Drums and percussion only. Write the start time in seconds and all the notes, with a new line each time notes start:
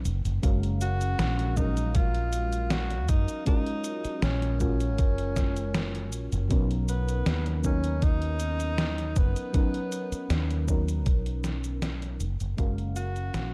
0.05 closed hi-hat, cabasa
0.25 closed hi-hat, cabasa
0.43 kick, closed hi-hat, cabasa
0.63 closed hi-hat
0.81 closed hi-hat, cabasa
1.01 closed hi-hat, cabasa
1.19 snare, closed hi-hat, cabasa
1.39 closed hi-hat
1.57 kick, cabasa
1.77 closed hi-hat, cabasa
1.95 kick, closed hi-hat, cabasa
2.14 closed hi-hat
2.33 closed hi-hat, cabasa
2.53 closed hi-hat, cabasa
2.70 snare, closed hi-hat, cabasa
2.90 closed hi-hat
3.09 kick, closed hi-hat, cabasa
3.28 closed hi-hat, cabasa
3.46 kick, closed hi-hat, cabasa
3.67 closed hi-hat
3.84 closed hi-hat, cabasa
4.05 closed hi-hat, cabasa
4.22 snare, closed hi-hat, cabasa
4.42 closed hi-hat
4.60 kick, closed hi-hat, cabasa
4.80 closed hi-hat, cabasa
4.98 kick, closed hi-hat, cabasa
5.18 closed hi-hat
5.36 kick, snare, closed hi-hat, cabasa
5.56 closed hi-hat, cabasa
5.74 snare, closed hi-hat, cabasa
5.95 closed hi-hat
6.12 closed hi-hat, cabasa
6.32 closed hi-hat, cabasa
6.51 kick, closed hi-hat, cabasa
6.71 closed hi-hat
6.89 closed hi-hat, cabasa
7.09 closed hi-hat, cabasa
7.26 snare, closed hi-hat, cabasa
7.46 closed hi-hat
7.64 kick, cabasa
7.84 closed hi-hat, cabasa
8.02 kick, closed hi-hat, cabasa
8.22 closed hi-hat
8.40 closed hi-hat, cabasa
8.60 closed hi-hat, cabasa
8.78 snare, closed hi-hat, cabasa
8.98 closed hi-hat
9.16 kick, closed hi-hat, cabasa
9.36 closed hi-hat, cabasa
9.54 kick, closed hi-hat, cabasa
9.74 closed hi-hat
9.92 closed hi-hat, cabasa
10.12 closed hi-hat, cabasa
10.30 snare, closed hi-hat, cabasa
10.51 closed hi-hat
10.68 kick, cabasa
10.89 closed hi-hat, cabasa
11.06 kick, closed hi-hat, cabasa
11.26 closed hi-hat
11.44 snare, closed hi-hat, cabasa
11.64 closed hi-hat, cabasa
11.82 snare, closed hi-hat, cabasa
12.02 closed hi-hat
12.20 closed hi-hat, cabasa
12.40 closed hi-hat, cabasa
12.58 kick, closed hi-hat, cabasa
12.78 closed hi-hat
12.96 closed hi-hat, cabasa
13.16 closed hi-hat, cabasa
13.34 snare, closed hi-hat, cabasa